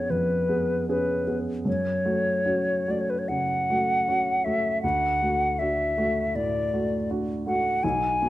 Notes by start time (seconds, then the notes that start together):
Already playing: F2 B3 C#4 G#4 C#5
0.10 F2 B4
0.49 B3 G#4
0.89 C#4 G#4 B4
1.27 B3 G#4
1.65 F#2 C#5
2.05 A3 F#4
2.46 C#4 F#4
2.88 A3 F#4 D5
3.01 C#5
3.10 B4
3.19 C#5
3.28 C#3 F#5
3.70 A3 F#4
4.08 C#4 F#4
4.45 A3 F#4 E5
4.82 D2 F#5
5.21 A3 F#4
5.59 D4 F#4 E5
5.97 A3 F#4
6.35 A2 D5
6.73 A3 F#4
7.11 D4 F#4
7.47 A3 F#4 F#5
7.83 B1 G#5
8.22 B3 F#4